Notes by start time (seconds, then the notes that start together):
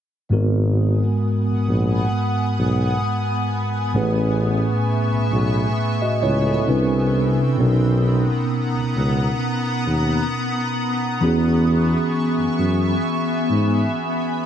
0.30 G#1 G#2 G#3 B3 F#4 A#4 F#5 G#5 D#6
1.47 A#1
1.68 A#1
2.59 B1
3.93 A1 A2 A3 C#4 G#4 B4 E5 C#6
5.11 B1
5.31 B1
6.02 F#4 D#5
6.23 C#2 E4 C#5
6.47 C#4 A4
6.67 C2 C3 C4 D4 E4 B4
7.57 B1 B2 B3 C#4 D#4 F#5 A#5 D#6
7.61 A#4
8.74 C#2
8.95 C#2
9.86 D#2
11.21 E2 E3 B3 C#4 F#4 E5 G#5 C#6
11.25 G#4
12.38 F#2
12.59 F#2
13.04 B5
13.50 G#2